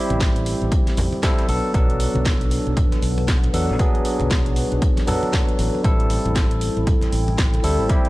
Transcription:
0.00 1.20 G3 medium
0.00 1.20 C4 medium
0.00 1.21 E4 medium
0.00 3.03 E4 medium
0.00 1.21 G4 loud
0.00 8.09 A4 medium
0.00 1.49 C5 medium
0.00 1.49 G5 medium
0.10 0.53 A1 loud
0.10 closed hi-hat soft
0.10 muted conga soft
0.10 high conga medium
0.20 kick loud
0.20 snare loud
0.20 closed hi-hat medium
0.36 closed hi-hat medium
0.46 closed hi-hat medium
0.46 open hi-hat loud
0.61 0.68 A1 medium
0.61 closed hi-hat soft
0.72 kick loud
0.72 closed hi-hat medium
0.87 snare soft
0.87 closed hi-hat soft
0.87 closed hi-hat medium
0.87 muted conga medium
0.97 1.07 A1 medium
0.97 closed hi-hat medium
0.97 open hi-hat loud
0.97 low conga loud
1.12 muted conga medium
1.23 1.46 G3 medium
1.23 1.46 C4 medium
1.23 1.46 E4 medium
1.23 1.46 A4 loud
1.23 kick loud
1.23 snare loud
1.23 closed hi-hat medium
1.38 snare medium
1.38 closed hi-hat medium
1.48 1.58 B1 medium
1.48 1.72 F#3 medium
1.48 1.72 B3 medium
1.48 7.11 D4 medium
1.48 1.72 D4 medium
1.48 1.72 A4 medium
1.48 closed hi-hat medium
1.48 open hi-hat loud
1.65 5.85 B4 medium
1.74 2.06 B1 medium
1.74 3.51 F#3 medium
1.74 3.51 B3 medium
1.74 3.52 D4 medium
1.74 3.52 A4 medium
1.74 kick loud
1.74 closed hi-hat medium
1.90 closed hi-hat soft
2.00 closed hi-hat medium
2.00 open hi-hat loud
2.15 2.58 B1 medium
2.15 muted conga soft
2.15 high conga medium
2.25 kick loud
2.25 snare loud
2.25 closed hi-hat medium
2.41 closed hi-hat soft
2.51 closed hi-hat medium
2.51 open hi-hat loud
2.65 2.73 B1 medium
2.65 5.85 F#5 medium
2.65 closed hi-hat soft
2.77 kick loud
2.77 closed hi-hat medium
2.77 low conga medium
2.92 snare medium
2.92 closed hi-hat medium
2.92 muted conga soft
3.02 3.48 B1 medium
3.02 closed hi-hat medium
3.02 open hi-hat loud
3.18 muted conga medium
3.28 kick loud
3.28 snare loud
3.28 closed hi-hat medium
3.44 closed hi-hat medium
3.44 muted conga medium
3.53 3.71 E2 medium
3.53 3.77 F#3 medium
3.53 3.77 B3 medium
3.53 3.77 D4 medium
3.53 3.77 A4 medium
3.53 closed hi-hat medium
3.53 open hi-hat loud
3.69 3.76 B1 medium
3.79 5.05 F#3 medium
3.79 5.06 B3 medium
3.79 5.06 D4 medium
3.79 5.06 G#4 medium
3.79 kick loud
3.79 closed hi-hat medium
3.95 closed hi-hat soft
4.05 closed hi-hat medium
4.05 open hi-hat loud
4.20 4.63 B1 medium
4.20 closed hi-hat soft
4.20 muted conga soft
4.20 high conga medium
4.31 kick loud
4.31 snare loud
4.31 closed hi-hat medium
4.46 closed hi-hat soft
4.56 closed hi-hat medium
4.56 open hi-hat loud
4.72 4.78 B1 medium
4.72 closed hi-hat soft
4.82 kick loud
4.82 closed hi-hat medium
4.97 snare soft
4.97 closed hi-hat soft
4.97 muted conga medium
5.07 5.82 F#3 medium
5.07 5.82 B3 medium
5.07 5.82 D4 medium
5.07 5.82 A4 medium
5.07 closed hi-hat medium
5.07 open hi-hat loud
5.07 low conga medium
5.23 muted conga medium
5.33 kick loud
5.33 snare loud
5.33 closed hi-hat medium
5.49 closed hi-hat soft
5.59 5.69 A1 medium
5.59 closed hi-hat medium
5.59 open hi-hat loud
5.75 muted conga soft
5.84 6.17 A1 loud
5.84 7.61 G3 medium
5.84 7.61 C4 medium
5.84 8.09 E4 medium
5.84 7.62 E4 medium
5.84 7.62 A4 medium
5.84 kick loud
5.84 closed hi-hat medium
6.00 closed hi-hat soft
6.10 closed hi-hat medium
6.10 open hi-hat loud
6.25 6.68 A1 medium
6.25 8.09 G5 medium
6.25 closed hi-hat soft
6.25 muted conga soft
6.25 high conga medium
6.30 8.09 C5 medium
6.36 kick loud
6.36 snare loud
6.36 closed hi-hat medium
6.51 closed hi-hat medium
6.61 closed hi-hat medium
6.61 open hi-hat loud
6.77 6.83 A1 medium
6.77 closed hi-hat soft
6.87 kick loud
6.87 closed hi-hat medium
6.87 low conga medium
7.01 snare medium
7.01 closed hi-hat soft
7.01 muted conga soft
7.12 7.58 A1 medium
7.12 closed hi-hat medium
7.12 open hi-hat loud
7.28 muted conga medium
7.38 kick loud
7.38 snare loud
7.38 closed hi-hat medium
7.54 closed hi-hat soft
7.54 muted conga medium
7.63 7.79 D2 medium
7.63 7.87 G3 medium
7.63 7.87 C4 medium
7.63 7.87 E4 medium
7.63 7.87 A4 medium
7.63 closed hi-hat medium
7.63 open hi-hat loud
7.79 7.86 A1 medium
7.89 8.09 G3 medium
7.89 8.09 C4 medium
7.89 8.09 E4 medium
7.89 8.09 G4 medium
7.89 kick loud
7.89 closed hi-hat medium
8.05 closed hi-hat medium

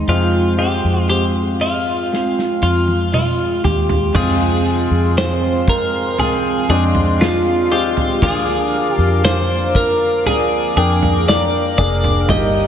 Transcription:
0.00 4.11 G#3 medium
0.00 0.12 D#4 medium
0.00 4.11 C6 medium
0.07 0.80 F2 medium
0.07 0.59 F2 soft
0.07 0.59 C3 medium
0.07 0.59 F3 medium
0.07 0.57 G#3 medium
0.07 0.59 G#3 medium
0.07 0.57 C4 soft
0.07 0.58 C4 medium
0.07 0.57 F4 soft
0.07 0.58 F4 medium
0.07 0.57 F4 medium
0.07 0.57 C5 medium
0.07 4.11 F5 medium
0.58 2.09 F3 soft
0.58 1.07 G#3 medium
0.58 2.11 G#3 soft
0.58 1.07 C4 medium
0.58 2.13 C4 soft
0.58 2.15 F4 soft
0.58 1.08 F4 soft
0.58 1.08 G4 medium
0.58 1.08 C5 medium
0.84 2.59 F2 medium
1.10 3.03 G#3 soft
1.10 3.04 C4 soft
1.10 3.03 F4 soft
1.10 1.23 G4 medium
1.10 3.04 C5 medium
1.61 2.62 F4 medium
2.09 4.14 F3 soft
2.09 4.15 G#3 soft
2.13 4.16 C4 soft
2.13 4.17 F4 soft
2.13 snare soft
2.39 snare soft
2.62 3.60 F2 medium
2.62 3.13 F4 medium
2.88 high tom soft
3.14 3.64 F4 soft
3.14 mid tom medium
3.64 4.12 D#2 medium
3.64 4.15 G4 medium
3.64 floor tom medium
3.89 floor tom medium
4.13 6.16 F2 medium
4.13 4.87 F2 loud
4.13 6.16 C3 medium
4.13 6.17 F3 medium
4.13 8.17 G#3 medium
4.13 6.08 G#3 medium
4.13 6.17 G#3 medium
4.13 6.08 C4 medium
4.13 6.18 C4 medium
4.13 6.09 F4 medium
4.13 5.18 G#4 medium
4.13 12.25 F5 medium
4.13 8.17 C6 medium
4.13 kick loud
4.13 floor tom loud
4.13 crash loud
4.17 6.18 F4 medium
4.91 6.65 F2 medium
5.18 5.69 C5 medium
5.18 snare loud
5.68 6.19 A#4 medium
5.68 kick medium
6.17 7.20 F2 medium
6.17 7.20 C3 medium
6.17 7.19 F3 medium
6.17 7.19 G#3 medium
6.17 7.20 C4 medium
6.17 7.21 F4 medium
6.17 6.69 G#4 medium
6.17 floor tom soft
6.69 7.71 F2 medium
6.69 7.66 G#3 medium
6.69 7.66 C4 medium
6.69 7.67 D4 medium
6.69 6.84 G#4 medium
6.95 floor tom medium
7.19 8.23 F3 medium
7.19 8.22 G#3 medium
7.19 8.23 C4 medium
7.19 7.73 F4 medium
7.19 8.25 F4 medium
7.19 snare loud
7.71 8.22 D#2 medium
7.71 8.20 G#3 medium
7.71 8.20 C4 medium
7.71 8.20 F4 medium
7.71 8.23 G4 medium
7.97 floor tom medium
8.21 10.23 F2 medium
8.21 8.94 F2 loud
8.21 10.24 D3 medium
8.21 10.25 F3 medium
8.21 10.16 A#3 medium
8.21 10.26 A#3 medium
8.21 10.16 D4 medium
8.21 10.27 D4 medium
8.21 10.16 F4 medium
8.21 8.93 G#4 medium
8.21 12.67 A#4 medium
8.21 12.25 D6 medium
8.21 kick loud
8.21 floor tom loud
8.26 10.27 F4 medium
8.93 9.24 G4 medium
8.98 10.72 F2 medium
9.25 9.76 C5 loud
9.25 snare loud
9.75 10.26 A#4 medium
9.75 kick medium
10.24 12.28 F2 medium
10.24 12.29 D3 medium
10.24 12.28 F3 medium
10.24 12.28 A#3 medium
10.24 12.29 D4 medium
10.24 10.76 G#4 loud
10.24 floor tom soft
10.28 12.30 F4 medium
10.77 11.74 F2 medium
10.77 11.74 A#3 medium
10.77 11.73 D4 medium
10.77 11.28 G#4 loud
10.77 11.74 G5 medium
11.02 floor tom medium
11.28 11.77 D5 medium
11.28 snare loud
11.78 12.29 F1 medium
11.78 12.26 A#3 medium
11.78 12.27 D4 medium
11.78 12.27 G#4 medium
11.78 12.30 D5 loud
11.78 kick medium
12.04 floor tom medium
12.28 12.67 G1 loud
12.28 12.67 G2 medium
12.28 12.67 G3 medium
12.28 12.67 A#3 medium
12.28 12.67 D#4 medium
12.28 12.67 G4 medium
12.28 12.67 D#5 loud
12.28 12.67 G5 medium
12.28 12.67 D#6 medium
12.28 kick loud
12.28 floor tom loud

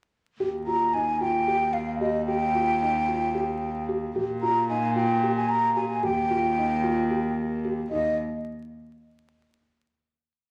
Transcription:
0.40 4.17 D#2 medium
0.40 0.62 G4 medium
0.66 0.89 F4 medium
0.66 0.95 A#5 medium
0.94 1.16 D#4 medium
0.94 1.20 G#5 medium
1.21 1.42 F4 medium
1.21 1.75 G5 medium
1.47 1.91 G4 medium
1.73 1.99 F5 medium
2.00 2.23 G4 medium
2.00 2.25 D#5 medium
2.26 2.50 G4 medium
2.26 3.84 G5 medium
2.55 2.76 F4 medium
2.81 3.03 D#4 medium
3.08 3.30 F4 medium
3.35 3.78 G4 medium
3.89 4.10 G4 medium
4.15 6.06 A#2 medium
4.15 4.37 G4 medium
4.42 4.64 F4 medium
4.42 4.67 A#5 medium
4.69 4.91 D#4 medium
4.69 4.94 G#5 medium
4.95 5.17 F4 medium
4.95 5.33 G5 medium
5.23 5.66 G4 medium
5.36 5.50 G#5 medium
5.49 5.75 A#5 medium
5.75 5.98 G4 medium
5.75 6.01 G#5 medium
6.03 7.88 D#2 medium
6.03 6.25 G4 medium
6.03 7.34 G5 medium
6.30 6.52 F4 medium
6.57 6.79 D#4 medium
6.83 7.05 F4 medium
7.10 7.54 G4 medium
7.64 7.86 G4 medium
7.90 8.16 D#2 medium
7.90 8.16 D#4 medium
7.90 8.15 D#5 medium

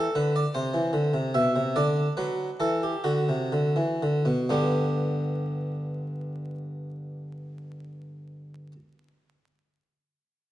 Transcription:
0.00 0.51 D4 soft
0.00 0.16 A4 medium
0.15 0.43 D3 medium
0.15 0.34 B4 medium
0.36 0.54 D5 medium
0.54 0.73 C3 soft
0.54 1.22 C5 medium
0.74 0.92 E3 medium
0.93 1.12 D3 medium
1.14 1.33 C3 medium
1.34 1.54 B2 soft
1.34 1.75 E5 medium
1.56 1.75 C3 soft
1.76 2.06 D3 soft
1.76 3.02 D4 soft
1.76 2.11 D5 medium
2.17 2.49 F#3 soft
2.17 2.60 B4 medium
2.60 2.92 E3 soft
2.60 2.82 A4 medium
2.83 3.06 G4 soft
3.04 3.27 D3 soft
3.04 4.29 F#4 soft
3.29 3.51 C3 soft
3.52 3.76 D3 soft
3.76 4.00 E3 soft
4.02 4.26 D3 soft
4.25 4.49 B2 soft
4.49 8.72 G2 soft
4.49 8.72 D3 soft
4.49 8.72 B3 soft
4.49 8.72 D4 soft
4.49 8.73 G4 soft

